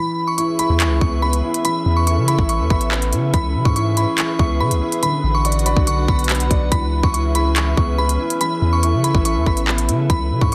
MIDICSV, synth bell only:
0, 0, Header, 1, 2, 480
1, 0, Start_track
1, 0, Tempo, 422535
1, 1871, Time_signature, 4, 2, 24, 8
1, 11984, End_track
2, 0, Start_track
2, 0, Title_t, "Synth bell"
2, 0, Program_c, 0, 98
2, 0, Note_on_c, 0, 83, 106
2, 288, Note_off_c, 0, 83, 0
2, 312, Note_on_c, 0, 85, 78
2, 407, Note_off_c, 0, 85, 0
2, 430, Note_on_c, 0, 85, 80
2, 622, Note_off_c, 0, 85, 0
2, 673, Note_on_c, 0, 83, 88
2, 863, Note_off_c, 0, 83, 0
2, 908, Note_on_c, 0, 85, 78
2, 1101, Note_off_c, 0, 85, 0
2, 1150, Note_on_c, 0, 85, 74
2, 1342, Note_off_c, 0, 85, 0
2, 1390, Note_on_c, 0, 83, 89
2, 1582, Note_off_c, 0, 83, 0
2, 1875, Note_on_c, 0, 83, 108
2, 2212, Note_off_c, 0, 83, 0
2, 2233, Note_on_c, 0, 85, 76
2, 2328, Note_off_c, 0, 85, 0
2, 2353, Note_on_c, 0, 85, 83
2, 2544, Note_off_c, 0, 85, 0
2, 2589, Note_on_c, 0, 83, 86
2, 2781, Note_off_c, 0, 83, 0
2, 2831, Note_on_c, 0, 85, 81
2, 3023, Note_off_c, 0, 85, 0
2, 3076, Note_on_c, 0, 83, 78
2, 3750, Note_off_c, 0, 83, 0
2, 3792, Note_on_c, 0, 83, 102
2, 4130, Note_off_c, 0, 83, 0
2, 4148, Note_on_c, 0, 85, 74
2, 4245, Note_off_c, 0, 85, 0
2, 4274, Note_on_c, 0, 85, 84
2, 4464, Note_off_c, 0, 85, 0
2, 4511, Note_on_c, 0, 83, 85
2, 4703, Note_off_c, 0, 83, 0
2, 4751, Note_on_c, 0, 85, 79
2, 4943, Note_off_c, 0, 85, 0
2, 4992, Note_on_c, 0, 85, 72
2, 5183, Note_off_c, 0, 85, 0
2, 5231, Note_on_c, 0, 83, 87
2, 5422, Note_off_c, 0, 83, 0
2, 5712, Note_on_c, 0, 83, 104
2, 6050, Note_off_c, 0, 83, 0
2, 6073, Note_on_c, 0, 85, 77
2, 6168, Note_off_c, 0, 85, 0
2, 6191, Note_on_c, 0, 85, 75
2, 6382, Note_off_c, 0, 85, 0
2, 6431, Note_on_c, 0, 83, 73
2, 6622, Note_off_c, 0, 83, 0
2, 6671, Note_on_c, 0, 85, 84
2, 6863, Note_off_c, 0, 85, 0
2, 6912, Note_on_c, 0, 83, 80
2, 7588, Note_off_c, 0, 83, 0
2, 7630, Note_on_c, 0, 83, 105
2, 7969, Note_off_c, 0, 83, 0
2, 7994, Note_on_c, 0, 85, 78
2, 8089, Note_off_c, 0, 85, 0
2, 8111, Note_on_c, 0, 85, 82
2, 8302, Note_off_c, 0, 85, 0
2, 8353, Note_on_c, 0, 83, 89
2, 8544, Note_off_c, 0, 83, 0
2, 8589, Note_on_c, 0, 85, 76
2, 8781, Note_off_c, 0, 85, 0
2, 8830, Note_on_c, 0, 85, 72
2, 9022, Note_off_c, 0, 85, 0
2, 9070, Note_on_c, 0, 83, 90
2, 9262, Note_off_c, 0, 83, 0
2, 9554, Note_on_c, 0, 83, 107
2, 9891, Note_off_c, 0, 83, 0
2, 9914, Note_on_c, 0, 85, 76
2, 10009, Note_off_c, 0, 85, 0
2, 10032, Note_on_c, 0, 85, 80
2, 10223, Note_off_c, 0, 85, 0
2, 10270, Note_on_c, 0, 83, 86
2, 10462, Note_off_c, 0, 83, 0
2, 10512, Note_on_c, 0, 85, 78
2, 10703, Note_off_c, 0, 85, 0
2, 10758, Note_on_c, 0, 83, 80
2, 11431, Note_off_c, 0, 83, 0
2, 11472, Note_on_c, 0, 83, 103
2, 11810, Note_off_c, 0, 83, 0
2, 11829, Note_on_c, 0, 85, 74
2, 11926, Note_off_c, 0, 85, 0
2, 11984, End_track
0, 0, End_of_file